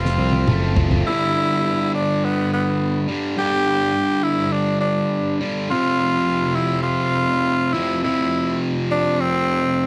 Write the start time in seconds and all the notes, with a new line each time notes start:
Already playing: F1 F2 F3 A3 C4 F4
0.05 snare
0.18 C2 C4 F4
0.32 high tom
0.48 F#1 A3 A4, mid tom
0.76 F3 F4, floor tom
0.91 floor tom
1.05 G2 D3 G3 E4
1.94 D4
2.24 B3
2.53 B3
3.08 G2 D3 G3
3.37 G2 D3 G3 G4
4.23 E4
4.52 D4
4.81 D4
5.40 D3 G3
5.45 G2
5.70 F2 C3 F3 F4
6.55 E4
6.83 F4
7.73 C3 F3 E4
7.78 F2
8.03 F2 C3 E4
8.07 F3
8.91 D4
9.20 C4